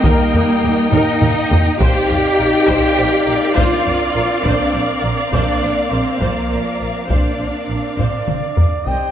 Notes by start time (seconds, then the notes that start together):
Already playing: A#3 D#4 A#4 D#5 G5
0.03 D#2 G3 A#3 A#4, taiko
0.34 D#2 A#4, taiko low
0.62 D#2 G4
0.91 D#2 A#3 D#4 A#4 D#5, taiko low-mid
1.21 D#2 A#4, taiko low-mid
1.50 D#2 G4, taiko low
1.79 A#1 C4 D#4 G4 A#4 C5 D5 F5 G5, taiko
2.07 A#1 C5, taiko low
2.38 A#1 A#4
2.67 A#1 C5, taiko
2.97 A#1 C5
3.26 A#1 A#4
3.55 A#1 D4 F4 C5 F5, taiko
3.84 A#1 C5, taiko low
4.14 A#1 A#4
4.43 A#1 A#3 D4 C5 D5, taiko
4.73 A#1 C5
5.03 A#1 A#4
5.32 A#1 A#3 D4 C5 D5, taiko
5.61 A#1 C5
5.90 A#1 G#3 C4 A#4 C5
6.20 A#1 F3 A#3 A#4 C5, taiko
6.50 A#1 C5
6.79 A#1 A#4
7.08 A#1 A#3 C4 D4 A#4 C5 D5 F5, taiko
7.39 A#1 C5
7.68 A#1 A#4
7.97 A#1 C5 D5, taiko low-mid
8.26 A#1 C5, taiko mid
8.56 A#1 A#4, taiko low
8.85 C2 G3 C4 D#4 G4 C5 D#5 G5, taiko, triangle